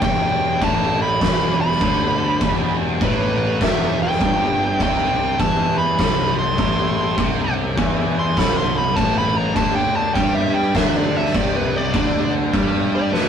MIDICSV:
0, 0, Header, 1, 5, 480
1, 0, Start_track
1, 0, Tempo, 595829
1, 21, Time_signature, 4, 2, 24, 8
1, 10704, End_track
2, 0, Start_track
2, 0, Title_t, "Lead electric guitar"
2, 0, Program_c, 0, 29
2, 31, Note_on_c, 0, 79, 98
2, 492, Note_off_c, 0, 79, 0
2, 512, Note_on_c, 0, 81, 100
2, 797, Note_off_c, 0, 81, 0
2, 822, Note_on_c, 0, 83, 87
2, 1277, Note_off_c, 0, 83, 0
2, 1297, Note_on_c, 0, 83, 105
2, 2221, Note_off_c, 0, 83, 0
2, 2453, Note_on_c, 0, 71, 106
2, 2905, Note_off_c, 0, 71, 0
2, 2935, Note_on_c, 0, 76, 92
2, 3210, Note_off_c, 0, 76, 0
2, 3242, Note_on_c, 0, 79, 100
2, 3864, Note_off_c, 0, 79, 0
2, 3892, Note_on_c, 0, 79, 93
2, 4344, Note_off_c, 0, 79, 0
2, 4350, Note_on_c, 0, 81, 103
2, 4638, Note_off_c, 0, 81, 0
2, 4657, Note_on_c, 0, 83, 101
2, 5117, Note_off_c, 0, 83, 0
2, 5145, Note_on_c, 0, 84, 113
2, 6067, Note_off_c, 0, 84, 0
2, 6601, Note_on_c, 0, 84, 112
2, 6756, Note_off_c, 0, 84, 0
2, 6756, Note_on_c, 0, 83, 99
2, 6906, Note_off_c, 0, 83, 0
2, 6909, Note_on_c, 0, 84, 94
2, 7062, Note_off_c, 0, 84, 0
2, 7069, Note_on_c, 0, 83, 94
2, 7217, Note_off_c, 0, 83, 0
2, 7217, Note_on_c, 0, 81, 107
2, 7376, Note_off_c, 0, 81, 0
2, 7397, Note_on_c, 0, 83, 94
2, 7544, Note_off_c, 0, 83, 0
2, 7544, Note_on_c, 0, 82, 105
2, 7698, Note_off_c, 0, 82, 0
2, 7701, Note_on_c, 0, 81, 96
2, 7856, Note_off_c, 0, 81, 0
2, 7859, Note_on_c, 0, 79, 98
2, 8018, Note_off_c, 0, 79, 0
2, 8018, Note_on_c, 0, 81, 82
2, 8169, Note_off_c, 0, 81, 0
2, 8172, Note_on_c, 0, 79, 91
2, 8333, Note_off_c, 0, 79, 0
2, 8335, Note_on_c, 0, 76, 90
2, 8492, Note_on_c, 0, 79, 91
2, 8495, Note_off_c, 0, 76, 0
2, 8653, Note_off_c, 0, 79, 0
2, 8666, Note_on_c, 0, 76, 90
2, 8834, Note_off_c, 0, 76, 0
2, 8834, Note_on_c, 0, 74, 113
2, 8993, Note_off_c, 0, 74, 0
2, 8993, Note_on_c, 0, 76, 99
2, 9149, Note_off_c, 0, 76, 0
2, 9149, Note_on_c, 0, 74, 93
2, 9301, Note_off_c, 0, 74, 0
2, 9315, Note_on_c, 0, 71, 99
2, 9476, Note_off_c, 0, 71, 0
2, 9476, Note_on_c, 0, 74, 102
2, 9934, Note_off_c, 0, 74, 0
2, 10436, Note_on_c, 0, 74, 100
2, 10579, Note_off_c, 0, 74, 0
2, 10579, Note_on_c, 0, 71, 94
2, 10704, Note_off_c, 0, 71, 0
2, 10704, End_track
3, 0, Start_track
3, 0, Title_t, "Distorted electric guitar"
3, 0, Program_c, 1, 30
3, 4, Note_on_c, 1, 40, 107
3, 481, Note_on_c, 1, 45, 109
3, 487, Note_off_c, 1, 40, 0
3, 966, Note_off_c, 1, 45, 0
3, 967, Note_on_c, 1, 40, 105
3, 1449, Note_off_c, 1, 40, 0
3, 1455, Note_on_c, 1, 50, 113
3, 1933, Note_off_c, 1, 50, 0
3, 1934, Note_on_c, 1, 40, 111
3, 2413, Note_off_c, 1, 40, 0
3, 2416, Note_on_c, 1, 45, 115
3, 2895, Note_off_c, 1, 45, 0
3, 2902, Note_on_c, 1, 40, 98
3, 3370, Note_off_c, 1, 40, 0
3, 3373, Note_on_c, 1, 43, 113
3, 3854, Note_off_c, 1, 43, 0
3, 3856, Note_on_c, 1, 48, 104
3, 4327, Note_off_c, 1, 48, 0
3, 4330, Note_on_c, 1, 52, 106
3, 4812, Note_off_c, 1, 52, 0
3, 4815, Note_on_c, 1, 48, 102
3, 5291, Note_off_c, 1, 48, 0
3, 5294, Note_on_c, 1, 45, 114
3, 5771, Note_off_c, 1, 45, 0
3, 5775, Note_on_c, 1, 48, 116
3, 6249, Note_off_c, 1, 48, 0
3, 6253, Note_on_c, 1, 52, 112
3, 6734, Note_off_c, 1, 52, 0
3, 6741, Note_on_c, 1, 48, 105
3, 7216, Note_off_c, 1, 48, 0
3, 7220, Note_on_c, 1, 45, 106
3, 7683, Note_off_c, 1, 45, 0
3, 7686, Note_on_c, 1, 50, 117
3, 8170, Note_off_c, 1, 50, 0
3, 8170, Note_on_c, 1, 55, 111
3, 8650, Note_on_c, 1, 50, 113
3, 8651, Note_off_c, 1, 55, 0
3, 9131, Note_off_c, 1, 50, 0
3, 9142, Note_on_c, 1, 48, 114
3, 9614, Note_off_c, 1, 48, 0
3, 9617, Note_on_c, 1, 50, 111
3, 10093, Note_off_c, 1, 50, 0
3, 10093, Note_on_c, 1, 55, 108
3, 10567, Note_on_c, 1, 50, 98
3, 10571, Note_off_c, 1, 55, 0
3, 10704, Note_off_c, 1, 50, 0
3, 10704, End_track
4, 0, Start_track
4, 0, Title_t, "Picked electric bass"
4, 0, Program_c, 2, 34
4, 18, Note_on_c, 2, 28, 90
4, 467, Note_off_c, 2, 28, 0
4, 498, Note_on_c, 2, 33, 104
4, 948, Note_off_c, 2, 33, 0
4, 977, Note_on_c, 2, 28, 92
4, 1428, Note_off_c, 2, 28, 0
4, 1461, Note_on_c, 2, 38, 96
4, 1910, Note_off_c, 2, 38, 0
4, 1942, Note_on_c, 2, 28, 90
4, 2390, Note_off_c, 2, 28, 0
4, 2425, Note_on_c, 2, 33, 100
4, 2872, Note_off_c, 2, 33, 0
4, 2907, Note_on_c, 2, 28, 84
4, 3353, Note_off_c, 2, 28, 0
4, 3389, Note_on_c, 2, 31, 99
4, 3835, Note_off_c, 2, 31, 0
4, 3864, Note_on_c, 2, 36, 83
4, 4312, Note_off_c, 2, 36, 0
4, 4346, Note_on_c, 2, 40, 94
4, 4793, Note_off_c, 2, 40, 0
4, 4824, Note_on_c, 2, 36, 91
4, 5273, Note_off_c, 2, 36, 0
4, 5303, Note_on_c, 2, 33, 101
4, 5752, Note_off_c, 2, 33, 0
4, 5783, Note_on_c, 2, 36, 85
4, 6232, Note_off_c, 2, 36, 0
4, 6262, Note_on_c, 2, 40, 97
4, 6712, Note_off_c, 2, 40, 0
4, 6742, Note_on_c, 2, 36, 97
4, 7191, Note_off_c, 2, 36, 0
4, 7222, Note_on_c, 2, 33, 105
4, 7671, Note_off_c, 2, 33, 0
4, 7703, Note_on_c, 2, 38, 89
4, 8151, Note_off_c, 2, 38, 0
4, 8180, Note_on_c, 2, 43, 99
4, 8629, Note_off_c, 2, 43, 0
4, 8659, Note_on_c, 2, 38, 82
4, 9109, Note_off_c, 2, 38, 0
4, 9138, Note_on_c, 2, 36, 105
4, 9587, Note_off_c, 2, 36, 0
4, 9618, Note_on_c, 2, 38, 92
4, 10067, Note_off_c, 2, 38, 0
4, 10095, Note_on_c, 2, 43, 105
4, 10545, Note_off_c, 2, 43, 0
4, 10570, Note_on_c, 2, 38, 91
4, 10704, Note_off_c, 2, 38, 0
4, 10704, End_track
5, 0, Start_track
5, 0, Title_t, "Drums"
5, 13, Note_on_c, 9, 49, 65
5, 16, Note_on_c, 9, 36, 113
5, 94, Note_off_c, 9, 49, 0
5, 96, Note_off_c, 9, 36, 0
5, 496, Note_on_c, 9, 36, 112
5, 498, Note_on_c, 9, 49, 65
5, 577, Note_off_c, 9, 36, 0
5, 579, Note_off_c, 9, 49, 0
5, 978, Note_on_c, 9, 36, 103
5, 980, Note_on_c, 9, 49, 59
5, 992, Note_on_c, 9, 38, 100
5, 1059, Note_off_c, 9, 36, 0
5, 1061, Note_off_c, 9, 49, 0
5, 1072, Note_off_c, 9, 38, 0
5, 1381, Note_on_c, 9, 38, 32
5, 1456, Note_on_c, 9, 49, 62
5, 1460, Note_on_c, 9, 36, 107
5, 1462, Note_off_c, 9, 38, 0
5, 1537, Note_off_c, 9, 49, 0
5, 1540, Note_off_c, 9, 36, 0
5, 1939, Note_on_c, 9, 49, 59
5, 1942, Note_on_c, 9, 36, 112
5, 2020, Note_off_c, 9, 49, 0
5, 2023, Note_off_c, 9, 36, 0
5, 2425, Note_on_c, 9, 36, 107
5, 2428, Note_on_c, 9, 49, 55
5, 2506, Note_off_c, 9, 36, 0
5, 2509, Note_off_c, 9, 49, 0
5, 2908, Note_on_c, 9, 36, 97
5, 2908, Note_on_c, 9, 49, 59
5, 2919, Note_on_c, 9, 38, 112
5, 2988, Note_off_c, 9, 36, 0
5, 2989, Note_off_c, 9, 49, 0
5, 3000, Note_off_c, 9, 38, 0
5, 3315, Note_on_c, 9, 38, 35
5, 3389, Note_on_c, 9, 36, 104
5, 3392, Note_on_c, 9, 49, 61
5, 3395, Note_off_c, 9, 38, 0
5, 3470, Note_off_c, 9, 36, 0
5, 3472, Note_off_c, 9, 49, 0
5, 3869, Note_on_c, 9, 36, 119
5, 3873, Note_on_c, 9, 49, 71
5, 3949, Note_off_c, 9, 36, 0
5, 3953, Note_off_c, 9, 49, 0
5, 4347, Note_on_c, 9, 36, 106
5, 4350, Note_on_c, 9, 49, 65
5, 4428, Note_off_c, 9, 36, 0
5, 4430, Note_off_c, 9, 49, 0
5, 4824, Note_on_c, 9, 36, 105
5, 4825, Note_on_c, 9, 49, 62
5, 4837, Note_on_c, 9, 38, 106
5, 4905, Note_off_c, 9, 36, 0
5, 4906, Note_off_c, 9, 49, 0
5, 4917, Note_off_c, 9, 38, 0
5, 5302, Note_on_c, 9, 49, 62
5, 5303, Note_on_c, 9, 36, 107
5, 5383, Note_off_c, 9, 36, 0
5, 5383, Note_off_c, 9, 49, 0
5, 5783, Note_on_c, 9, 36, 112
5, 5783, Note_on_c, 9, 49, 62
5, 5864, Note_off_c, 9, 36, 0
5, 5864, Note_off_c, 9, 49, 0
5, 6264, Note_on_c, 9, 36, 110
5, 6271, Note_on_c, 9, 49, 55
5, 6345, Note_off_c, 9, 36, 0
5, 6351, Note_off_c, 9, 49, 0
5, 6744, Note_on_c, 9, 36, 98
5, 6750, Note_on_c, 9, 49, 56
5, 6762, Note_on_c, 9, 38, 117
5, 6824, Note_off_c, 9, 36, 0
5, 6831, Note_off_c, 9, 49, 0
5, 6842, Note_off_c, 9, 38, 0
5, 7223, Note_on_c, 9, 36, 103
5, 7231, Note_on_c, 9, 49, 67
5, 7304, Note_off_c, 9, 36, 0
5, 7312, Note_off_c, 9, 49, 0
5, 7701, Note_on_c, 9, 36, 112
5, 7703, Note_on_c, 9, 49, 69
5, 7782, Note_off_c, 9, 36, 0
5, 7784, Note_off_c, 9, 49, 0
5, 8182, Note_on_c, 9, 36, 102
5, 8190, Note_on_c, 9, 49, 65
5, 8262, Note_off_c, 9, 36, 0
5, 8270, Note_off_c, 9, 49, 0
5, 8659, Note_on_c, 9, 36, 96
5, 8660, Note_on_c, 9, 49, 62
5, 8671, Note_on_c, 9, 38, 110
5, 8739, Note_off_c, 9, 36, 0
5, 8740, Note_off_c, 9, 49, 0
5, 8752, Note_off_c, 9, 38, 0
5, 9065, Note_on_c, 9, 38, 33
5, 9139, Note_on_c, 9, 36, 104
5, 9142, Note_on_c, 9, 49, 65
5, 9146, Note_off_c, 9, 38, 0
5, 9220, Note_off_c, 9, 36, 0
5, 9223, Note_off_c, 9, 49, 0
5, 9618, Note_on_c, 9, 36, 115
5, 9622, Note_on_c, 9, 49, 68
5, 9699, Note_off_c, 9, 36, 0
5, 9702, Note_off_c, 9, 49, 0
5, 10099, Note_on_c, 9, 36, 106
5, 10103, Note_on_c, 9, 49, 60
5, 10179, Note_off_c, 9, 36, 0
5, 10184, Note_off_c, 9, 49, 0
5, 10590, Note_on_c, 9, 38, 67
5, 10670, Note_off_c, 9, 38, 0
5, 10704, End_track
0, 0, End_of_file